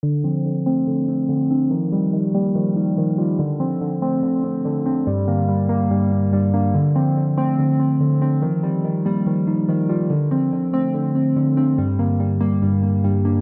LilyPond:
<<
  \new Staff \with { instrumentName = "Synth keys" } { \clef bass \time 4/4 \key d \phrygian \tempo 4 = 143 d8 c'8 d8 c'8 d4 d8 c'8 | ees8 g8 ees8 g8 ees4 ees8 g8 | d8 c'8 d8 c'8 d4 d8 c'8 | g8 bes8 g8 bes8 g4 g8 bes8 |
d8 c'8 d8 c'8 d4 d8 c'8 | ees8 g8 ees8 g8 ees4 ees8 g8 | d8 c'8 d8 c'8 d4 d8 c'8 | g8 bes8 g8 bes8 g4 g8 bes8 | }
  \new Staff \with { instrumentName = "Tine electric piano" } { \clef bass \time 4/4 \key d \phrygian d8 f4 a8 d8 c'8 d8 d'8 | f8 g4 bes8 f8 ees'8 f8 f'8 | d8 f4 a8 d8 c'8 d8 d'8 | g,8 d4 g8 g,8 bes8 g,8 d'8 |
d8 f4 a8 d8 c'8 d8 d'8 | f8 g4 bes8 f8 ees'8 f8 f'8 | d8 f4 a8 d8 c'8 d8 d'8 | g,8 d4 g8 g,8 bes8 g,8 d'8 | }
>>